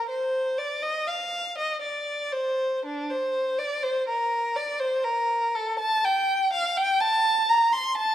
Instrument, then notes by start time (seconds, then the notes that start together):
violin
0.10 C5
0.58 D5
0.82 D#5
1.07 F5
1.58 D#5
1.82 D5
2.32 C5
2.85 D4
3.10 C5
3.58 D5
3.83 C5
4.08 A#4
4.56 D5
4.80 C5
5.04 A#4
5.55 A4
5.80 A5
6.04 G5
6.53 F5
6.77 G5
7.00 A5
7.49 A#5
7.72 C6
7.98 A5